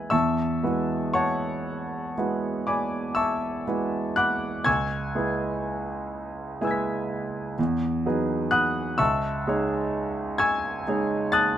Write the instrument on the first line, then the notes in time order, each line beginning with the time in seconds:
grand piano
Already playing: G#3 E4 F#4 B4 E5 G#5 B5 F#6 B6
0.10 E2 E5 A5 C#6 E6
0.63 G#3 E4 F#4 B4
1.14 C#5 F#5 A5 C#6
2.18 G#3 E4 F#4 B4
2.67 D5 G#5 B5 D6
3.15 E5 A5 C#6 E6
3.67 G#3 E4 F#4 B4
4.16 F#5 B5 D6 F#6
4.64 C#2 G#5 C#6 E6 G#6
5.15 G#3 E4 G#4 B4
6.61 G#3 E4 G#4 B4 G#5 E6
6.67 G#6 B6
7.59 E2
8.06 F#3 D#4 G#4 B4
8.51 F#5 B5 D#6 F#6
8.98 C#2 E5 A5 C#6 E6
9.47 G#3 D#4 G#4 C#5
10.38 G#5 C#6 E6 G#6
10.87 G#3 D#4 G#4 C#5
11.32 A5 D#6 F#6 A6